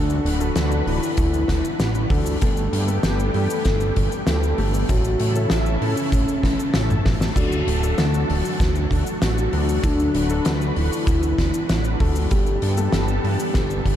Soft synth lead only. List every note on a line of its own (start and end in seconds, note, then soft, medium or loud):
0.00 0.75 D4 loud
0.87 2.29 E4 loud
2.42 3.22 A4 loud
3.35 4.15 A4 loud
4.27 4.74 A4 medium
4.90 5.70 F#4 loud
5.82 7.24 C#4 loud
7.37 8.17 F#4 loud
8.29 9.10 F#4 loud
9.22 9.85 F#4 medium
9.84 10.64 D4 loud
10.77 12.19 E4 loud
12.31 13.12 G4 loud
13.24 13.96 G4 loud